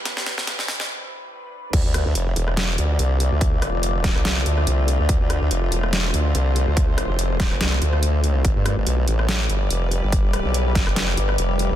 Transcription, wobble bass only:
1.73 D2
1.85 D2
2.06 D2
2.15 F1
2.36 E1
2.78 D2
2.99 C2
3.32 D2
3.74 F1
4.16 C2
4.46 D2
4.67 C2
5.00 D2
5.09 D2
5.21 D2
5.41 D2
5.51 F1
5.72 E1
6.14 D2
6.35 C2
6.67 D2
7.09 F1
7.51 F1
7.61 C2
7.82 D2
8.25 C#2
8.45 G1
8.56 G2
8.77 G1
8.87 B1
9.08 A1
9.50 G1
9.70 F1
10.03 G1
10.45 B1
10.87 F1
11.17 G1
11.38 F1
11.71 G1

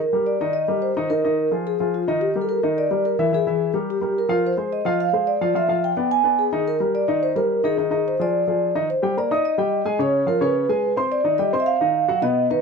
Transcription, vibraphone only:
Already playing: A#4
0.26 D5
0.53 D#5
0.82 C5
1.10 A#4
1.67 G#4
1.94 F4
2.21 G4
2.41 A4
2.49 A#4
2.78 D5
3.05 A#4
3.34 G#4
3.90 G4
4.18 A#4
4.47 C5
4.73 D#5
5.00 F5
5.27 D5
5.56 E5
5.84 G5
6.11 G#5
6.39 G#4
6.68 A#4
6.95 D5
7.23 C5
7.36 A#4
7.65 G#4
8.08 C5
8.22 D5
8.90 C5
9.18 D5
9.45 D#5
10.01 C#5
10.28 A#4
10.42 B4
11.12 D5
11.38 D#5
11.60 E5
11.66 F5
12.22 D#5
12.51 B4

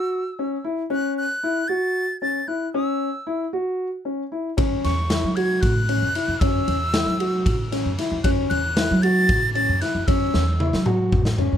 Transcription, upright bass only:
4.58 F#2
4.85 E2
5.24 F#3
5.63 A2
6.02 F#2
6.28 F#2
6.41 F#2
6.68 E2
7.06 F#3
7.46 A2
7.85 F#2
8.12 F#2
8.24 F#2
8.51 E2
8.91 F#3
9.29 A2
9.69 F#2
9.95 F#2
10.08 F#2
10.34 E2
10.73 F#3
11.13 A2
11.52 F#2

